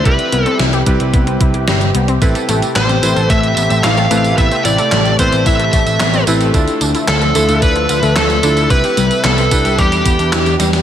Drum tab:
HH |xxxxxxxxxxxxxxxx|xxxxxxxxxxxxxxxx|xxxxxxxxxxxxxxxx|xxxxxxxxxxxxxxxx|
TB |----------------|xxxxx-xxx-xxxxxx|xxxxx-xxx-xxxxxx|xxxxx-xxx-xxxxxx|
CP |----------------|----x-------x---|----x-------x---|----x-------x---|
SD |----o-------o---|----o-------o---|----o-------o---|----o-------o---|
BD |o-----o-o-o-----|o-------o-------|o-----o-o-o-----|o-------o-------|

HH |xxxxxxxxxxxxxxxx|
TB |xxxxxxxxxxxxxxxx|
CP |----x-------x---|
SD |----o----o--o-oo|
BD |o-----o-o-o-----|